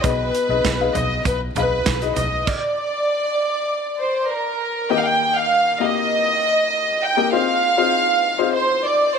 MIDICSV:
0, 0, Header, 1, 5, 480
1, 0, Start_track
1, 0, Tempo, 606673
1, 36, Time_signature, 4, 2, 24, 8
1, 7269, End_track
2, 0, Start_track
2, 0, Title_t, "Violin section"
2, 0, Program_c, 0, 48
2, 43, Note_on_c, 0, 71, 94
2, 757, Note_on_c, 0, 75, 78
2, 760, Note_off_c, 0, 71, 0
2, 997, Note_off_c, 0, 75, 0
2, 998, Note_on_c, 0, 71, 83
2, 1105, Note_off_c, 0, 71, 0
2, 1241, Note_on_c, 0, 71, 94
2, 1687, Note_off_c, 0, 71, 0
2, 1723, Note_on_c, 0, 75, 78
2, 1960, Note_off_c, 0, 75, 0
2, 1961, Note_on_c, 0, 74, 89
2, 3161, Note_on_c, 0, 72, 77
2, 3383, Note_off_c, 0, 72, 0
2, 3400, Note_off_c, 0, 74, 0
2, 3404, Note_on_c, 0, 70, 74
2, 3881, Note_off_c, 0, 70, 0
2, 3885, Note_on_c, 0, 79, 99
2, 3937, Note_off_c, 0, 79, 0
2, 3943, Note_on_c, 0, 77, 86
2, 3994, Note_off_c, 0, 77, 0
2, 4001, Note_on_c, 0, 79, 95
2, 4244, Note_off_c, 0, 79, 0
2, 4250, Note_on_c, 0, 77, 100
2, 4604, Note_off_c, 0, 77, 0
2, 4605, Note_on_c, 0, 75, 100
2, 5561, Note_off_c, 0, 75, 0
2, 5563, Note_on_c, 0, 79, 94
2, 5800, Note_off_c, 0, 79, 0
2, 5802, Note_on_c, 0, 77, 102
2, 6726, Note_off_c, 0, 77, 0
2, 6764, Note_on_c, 0, 72, 96
2, 6983, Note_off_c, 0, 72, 0
2, 7004, Note_on_c, 0, 74, 99
2, 7239, Note_off_c, 0, 74, 0
2, 7241, Note_on_c, 0, 72, 96
2, 7269, Note_off_c, 0, 72, 0
2, 7269, End_track
3, 0, Start_track
3, 0, Title_t, "Felt piano"
3, 0, Program_c, 1, 0
3, 0, Control_c, 1, 64, 127
3, 29, Note_on_c, 1, 63, 66
3, 32, Note_on_c, 1, 47, 58
3, 32, Note_on_c, 1, 68, 59
3, 34, Note_on_c, 1, 71, 59
3, 35, Note_on_c, 1, 75, 69
3, 44, Control_c, 1, 64, 0
3, 183, Control_c, 1, 64, 127
3, 347, Note_off_c, 1, 63, 0
3, 348, Note_off_c, 1, 68, 0
3, 350, Note_off_c, 1, 71, 0
3, 350, Note_off_c, 1, 75, 0
3, 392, Note_on_c, 1, 63, 68
3, 392, Note_on_c, 1, 68, 62
3, 395, Note_on_c, 1, 71, 63
3, 398, Note_on_c, 1, 75, 74
3, 604, Note_off_c, 1, 63, 0
3, 604, Note_off_c, 1, 68, 0
3, 605, Note_off_c, 1, 71, 0
3, 607, Note_off_c, 1, 75, 0
3, 631, Note_on_c, 1, 63, 69
3, 636, Note_on_c, 1, 68, 65
3, 638, Note_on_c, 1, 71, 66
3, 640, Note_on_c, 1, 77, 73
3, 723, Note_off_c, 1, 47, 0
3, 1158, Note_off_c, 1, 63, 0
3, 1161, Note_off_c, 1, 68, 0
3, 1162, Note_off_c, 1, 71, 0
3, 1163, Note_off_c, 1, 77, 0
3, 1239, Note_on_c, 1, 63, 67
3, 1240, Note_on_c, 1, 68, 61
3, 1243, Note_on_c, 1, 71, 59
3, 1246, Note_on_c, 1, 77, 73
3, 1553, Note_off_c, 1, 63, 0
3, 1553, Note_off_c, 1, 68, 0
3, 1554, Note_off_c, 1, 71, 0
3, 1556, Note_off_c, 1, 77, 0
3, 1595, Note_on_c, 1, 63, 62
3, 1598, Note_on_c, 1, 68, 59
3, 1600, Note_on_c, 1, 71, 57
3, 1602, Note_on_c, 1, 75, 72
3, 1911, Note_off_c, 1, 63, 0
3, 1912, Note_off_c, 1, 68, 0
3, 1913, Note_off_c, 1, 71, 0
3, 1914, Note_off_c, 1, 75, 0
3, 1968, Control_c, 1, 64, 0
3, 3875, Note_on_c, 1, 63, 68
3, 3876, Note_on_c, 1, 58, 69
3, 3878, Note_on_c, 1, 67, 66
3, 3879, Note_on_c, 1, 51, 66
3, 3880, Note_on_c, 1, 70, 65
3, 3881, Note_on_c, 1, 75, 83
3, 4005, Control_c, 1, 64, 127
3, 4505, Note_off_c, 1, 58, 0
3, 4505, Note_off_c, 1, 63, 0
3, 4506, Note_off_c, 1, 67, 0
3, 4508, Note_off_c, 1, 70, 0
3, 4508, Note_off_c, 1, 75, 0
3, 4566, Note_off_c, 1, 51, 0
3, 4588, Note_on_c, 1, 58, 73
3, 4591, Note_on_c, 1, 63, 68
3, 4595, Note_on_c, 1, 67, 70
3, 4597, Note_on_c, 1, 70, 71
3, 4598, Note_on_c, 1, 77, 78
3, 5430, Note_off_c, 1, 58, 0
3, 5432, Note_off_c, 1, 63, 0
3, 5434, Note_off_c, 1, 67, 0
3, 5435, Note_off_c, 1, 70, 0
3, 5435, Note_off_c, 1, 77, 0
3, 5672, Note_on_c, 1, 58, 74
3, 5674, Note_on_c, 1, 63, 67
3, 5675, Note_on_c, 1, 67, 73
3, 5675, Note_on_c, 1, 70, 73
3, 5677, Note_on_c, 1, 75, 84
3, 5779, Note_off_c, 1, 58, 0
3, 5780, Note_off_c, 1, 63, 0
3, 5780, Note_off_c, 1, 67, 0
3, 5781, Note_off_c, 1, 70, 0
3, 5781, Note_off_c, 1, 75, 0
3, 5792, Note_on_c, 1, 60, 78
3, 5792, Note_on_c, 1, 63, 67
3, 5794, Note_on_c, 1, 65, 69
3, 5797, Note_on_c, 1, 68, 67
3, 5799, Note_on_c, 1, 72, 83
3, 5805, Control_c, 1, 64, 0
3, 5937, Control_c, 1, 64, 127
3, 6108, Note_off_c, 1, 60, 0
3, 6108, Note_off_c, 1, 63, 0
3, 6109, Note_off_c, 1, 65, 0
3, 6111, Note_off_c, 1, 68, 0
3, 6112, Note_off_c, 1, 72, 0
3, 6150, Note_on_c, 1, 63, 66
3, 6151, Note_on_c, 1, 60, 76
3, 6153, Note_on_c, 1, 65, 75
3, 6154, Note_on_c, 1, 68, 68
3, 6156, Note_on_c, 1, 72, 86
3, 6572, Note_off_c, 1, 63, 0
3, 6573, Note_off_c, 1, 60, 0
3, 6573, Note_off_c, 1, 65, 0
3, 6574, Note_off_c, 1, 68, 0
3, 6575, Note_off_c, 1, 72, 0
3, 6629, Note_on_c, 1, 60, 75
3, 6631, Note_on_c, 1, 63, 73
3, 6635, Note_on_c, 1, 65, 72
3, 6636, Note_on_c, 1, 68, 71
3, 6638, Note_on_c, 1, 72, 84
3, 7269, Note_off_c, 1, 60, 0
3, 7269, Note_off_c, 1, 63, 0
3, 7269, Note_off_c, 1, 65, 0
3, 7269, Note_off_c, 1, 68, 0
3, 7269, Note_off_c, 1, 72, 0
3, 7269, End_track
4, 0, Start_track
4, 0, Title_t, "Fingered electric bass"
4, 0, Program_c, 2, 33
4, 31, Note_on_c, 2, 35, 94
4, 230, Note_off_c, 2, 35, 0
4, 388, Note_on_c, 2, 35, 80
4, 490, Note_off_c, 2, 35, 0
4, 509, Note_on_c, 2, 35, 82
4, 709, Note_off_c, 2, 35, 0
4, 750, Note_on_c, 2, 35, 82
4, 949, Note_off_c, 2, 35, 0
4, 989, Note_on_c, 2, 35, 90
4, 1189, Note_off_c, 2, 35, 0
4, 1228, Note_on_c, 2, 35, 81
4, 1429, Note_off_c, 2, 35, 0
4, 1473, Note_on_c, 2, 35, 83
4, 1671, Note_off_c, 2, 35, 0
4, 1710, Note_on_c, 2, 35, 91
4, 1910, Note_off_c, 2, 35, 0
4, 7269, End_track
5, 0, Start_track
5, 0, Title_t, "Drums"
5, 30, Note_on_c, 9, 42, 86
5, 32, Note_on_c, 9, 36, 108
5, 109, Note_off_c, 9, 42, 0
5, 111, Note_off_c, 9, 36, 0
5, 274, Note_on_c, 9, 42, 75
5, 353, Note_off_c, 9, 42, 0
5, 511, Note_on_c, 9, 38, 93
5, 512, Note_on_c, 9, 36, 93
5, 514, Note_on_c, 9, 42, 72
5, 590, Note_off_c, 9, 38, 0
5, 592, Note_off_c, 9, 36, 0
5, 593, Note_off_c, 9, 42, 0
5, 753, Note_on_c, 9, 42, 58
5, 753, Note_on_c, 9, 43, 56
5, 832, Note_off_c, 9, 42, 0
5, 833, Note_off_c, 9, 43, 0
5, 992, Note_on_c, 9, 36, 100
5, 995, Note_on_c, 9, 42, 85
5, 1071, Note_off_c, 9, 36, 0
5, 1074, Note_off_c, 9, 42, 0
5, 1234, Note_on_c, 9, 42, 66
5, 1238, Note_on_c, 9, 43, 60
5, 1313, Note_off_c, 9, 42, 0
5, 1317, Note_off_c, 9, 43, 0
5, 1472, Note_on_c, 9, 38, 100
5, 1472, Note_on_c, 9, 42, 79
5, 1475, Note_on_c, 9, 36, 98
5, 1551, Note_off_c, 9, 38, 0
5, 1551, Note_off_c, 9, 42, 0
5, 1554, Note_off_c, 9, 36, 0
5, 1597, Note_on_c, 9, 42, 46
5, 1676, Note_off_c, 9, 42, 0
5, 1713, Note_on_c, 9, 42, 69
5, 1713, Note_on_c, 9, 43, 55
5, 1792, Note_off_c, 9, 42, 0
5, 1792, Note_off_c, 9, 43, 0
5, 1956, Note_on_c, 9, 49, 83
5, 1957, Note_on_c, 9, 36, 95
5, 2036, Note_off_c, 9, 36, 0
5, 2036, Note_off_c, 9, 49, 0
5, 7269, End_track
0, 0, End_of_file